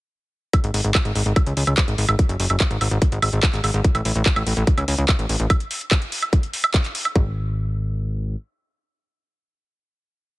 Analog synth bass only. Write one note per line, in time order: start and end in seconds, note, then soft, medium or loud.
0.64 0.71 G#1 medium
0.74 0.81 G#1 loud
0.84 0.91 G#1 medium
1.05 1.12 G#1 medium
1.16 1.22 G#1 loud
1.26 1.33 G#1 medium
1.47 1.53 C#2 medium
1.57 1.64 C#2 medium
1.67 1.74 C#2 medium
1.88 1.95 G#1 medium
1.98 2.05 G#1 loud
2.09 2.15 G#1 loud
2.29 2.36 F#1 medium
2.40 2.46 F#1 loud
2.50 2.57 F#1 medium
2.71 2.77 G#1 medium
2.81 2.88 G#1 loud
2.91 2.98 G#1 medium
3.12 3.19 G#1 medium
3.22 3.29 G#1 loud
3.33 3.40 G#1 loud
3.53 3.60 G#1 medium
3.64 3.71 G#1 loud
3.74 3.81 G#1 loud
3.95 4.02 A1 medium
4.05 4.12 A1 loud
4.16 4.22 A1 medium
4.36 4.43 A1 medium
4.47 4.53 A1 loud
4.57 4.64 A1 medium
4.78 4.84 C#2 medium
4.88 4.95 C#2 loud
4.98 5.05 C#2 medium
5.19 5.26 A1 medium
5.29 5.36 A1 loud
5.40 5.46 A1 medium
7.16 8.36 G#1 loud